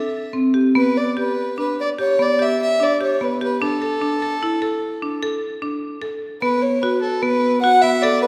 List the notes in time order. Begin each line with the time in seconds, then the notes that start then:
Already playing: A4 E5
0.33 C4
0.54 G4
0.75 B3 B4
0.97 D5
1.17 G4 B4
1.58 D4 B4
1.81 D5
1.99 G4 C#5
2.19 B3 D5
2.39 G4 E5
2.62 E5
2.80 D4 D5
3.01 G4 C#5
3.21 B3 B4
3.41 G4 B4
3.62 D4 A4
3.82 A4
4.02 D4
4.22 A4
4.43 E4
4.62 A4
5.02 D4
5.23 A4
5.62 D4
6.02 A4
6.42 B3 B4
6.62 C#5
6.81 F#4 B4
7.01 A4
7.22 B3 B4
7.61 F#4 F#5
7.81 B3 E5
8.02 A4 D5
8.22 B4